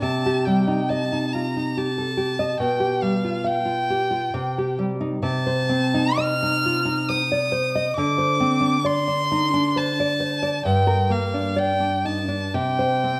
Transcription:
0.01 C3 A5
0.26 G4
0.45 G3 G5
0.67 D#4
0.89 D#5 A5
1.12 D#4
1.33 F4 A#5
1.57 D#4
1.77 G4 A5
1.98 A4
2.17 G4
2.39 D#5
2.59 B2 G5
2.80 G4
3.02 G3 F5
3.24 F4
3.44 F5 G5
3.65 F4
3.90 G4
4.11 F4
4.34 C3
4.58 G4
4.79 G3
5.01 D#4
5.22 C3 A5
5.47 C5
5.69 C4
5.94 D#4
6.18 D#5 F6
6.43 D#4
6.66 F4
6.85 D#4
7.09 C5 D#6
7.32 D5
7.52 C5
7.75 D#5
7.96 D3 D6
8.18 C5
8.40 C4
8.61 D4
8.85 D5 C6
9.08 D4
9.32 D#4
9.54 D4
9.76 C5 A5
10.00 D5
10.20 C5
10.43 D5
10.65 G2 G5
10.87 A#4
11.10 A#3 F5
11.34 D4
11.56 D5 G5
11.80 D4
12.05 D#4 A5
12.28 D4
12.54 C3 G5
12.79 C5
13.04 C4

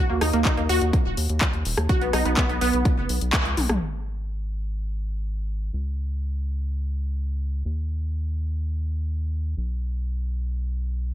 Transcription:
0.09 D#2 A#3
0.21 D#2 D#4, cross-stick, open hi-hat
0.33 D#2 A#3, closed hi-hat
0.45 D#4, kick, clap, closed hi-hat
0.57 D#2 A#3, closed hi-hat
0.69 D#2 F#4, open hi-hat
0.81 D#2, closed hi-hat
0.93 kick, closed hi-hat
1.05 D#1
1.17 D#2, open hi-hat
1.29 D#2, closed hi-hat
1.41 kick, clap, closed hi-hat
1.53 D#2, closed hi-hat
1.65 D#1, open hi-hat
1.77 D#2, cross-stick, closed hi-hat
1.89 F#4, kick, closed hi-hat
2.01 B1 B3, closed hi-hat
2.13 B1 D#4, cross-stick, open hi-hat
2.25 B1 B3, closed hi-hat
2.37 B3, kick, clap, closed hi-hat
2.49 B1 B3, closed hi-hat
2.61 B1 B3, open hi-hat
2.73 B1, closed hi-hat
2.85 kick, closed hi-hat
2.97 F#1
3.09 B1, open hi-hat
3.21 B1, closed hi-hat
3.33 kick, clap, closed hi-hat
3.45 C#2, closed hi-hat
3.57 B1, open hi-hat, high tom
3.69 B1, cross-stick, closed hi-hat, mid tom
3.81 G#1
5.73 C#2
7.65 D#2
9.57 B1

